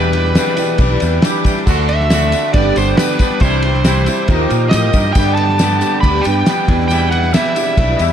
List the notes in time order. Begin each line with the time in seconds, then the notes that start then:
Already playing: E2 B2 E3 G3 D4 E4 G4 B4 D5 E5 G5 D6
0.13 E3 G3 D4 G4, ride
0.24 snare
0.35 E2 B2 E3 G3 D4 G4, snare, ride, tambourine
0.47 snare
0.57 E3 G3 D4 E4 G4 B4 D5, ride, tambourine
0.78 B1 E2 B2 E3 G3 D4 G4, kick, ride
0.91 E4 G4 B4 D5
1.00 E2 D4 G4, ride, tambourine
1.04 E3 G3
1.22 E3 G3 D4 B5, snare, ride, tambourine
1.27 G4
1.44 D4 G4 E5, kick, ride, tambourine
1.49 E3 G3
1.57 snare
1.65 D2 D3 A3 D4 F#4 A4 D5 F#5, kick, crash, tambourine
1.89 A3 D4 F#4 E5, ride
2.00 snare
2.10 D3 A3 D4 F#4, snare, ride, tambourine
2.32 A3 D4 F#4 A4 D5, ride, tambourine
2.53 G1 G2 D3 G3 B3 D4 G4 B4 D5 G5, kick, ride
2.65 D4 G4 B4 D5
2.76 G1 G3 B3 D4 G4 C5, ride, tambourine
2.97 G3 B3 D4 G4 B4, snare, ride, tambourine
3.19 D4 G4, kick, ride, tambourine
3.23 G3 B3
3.30 snare
3.40 C2 C3 E3 C4 E4 G4 C5 D5 E5, kick, ride, tambourine
3.44 G3 D4 E4 G4
3.62 D4 E4 G4, ride
3.67 G3 C4
3.74 snare
3.84 C3 E3 G3 C4 D4 E4 G4, snare, ride, tambourine
4.06 G3 C4 D4 E4 G4 C5 E5, ride, tambourine
4.28 D#2 D#3 F3 A#3 D#4 F4 G4 A#4 D#5 F5, kick, ride, tambourine
4.39 F4 G4 A#4 D6
4.50 A#2 D#4 G4, ride, tambourine
4.54 A#3
4.69 F3 A#3 D#4 D#5, snare, ride, tambourine
4.74 A2 G4
4.92 G2 A#3 D#4 G4, kick, ride, tambourine
5.05 snare
5.13 G2 D3 G3 B3 D4 G4 D5 G5 D6, kick, tambourine, crash
5.17 D4 G4 B4 D5
5.35 D4 G4 A5, ride
5.39 G3 B3
5.49 snare
5.59 G2 D3 G3 B3 D4 G4, snare, ride, tambourine
5.71 snare
5.81 G3 B3 D4 G4 B4 D5, ride, tambourine
6.01 D2 G2 D3 G3 B3 B5, kick, ride
6.05 D4 G4
6.14 D4 G4 B4 D5
6.21 G5, ride, tambourine
6.26 G2 G3 B3 D4 G4
6.46 G3 B3 D4 G4, snare, ride, tambourine
6.68 E2 B2 E3 G3 D4 E4 G4 B4 D5 E5, kick, ride
6.72 E2
6.80 snare
6.88 E2 B2 E3 G3 D4 E4 G5, ride, tambourine
7.10 E3 G3 D4 E4 F#5, ride
7.23 snare
7.31 E2 B2 E3 G3 D4 E4 E5, snare, ride, tambourine
7.46 snare
7.54 E3 G3 D4 E4 G4 B4 D5, ride, tambourine
7.77 B1 E2 B2 E3 G3 D4 E4, kick, ride
7.90 E4 G4 B4 D5
7.97 E2 D4 E4 D#5, ride, tambourine
8.01 E3 G3 E5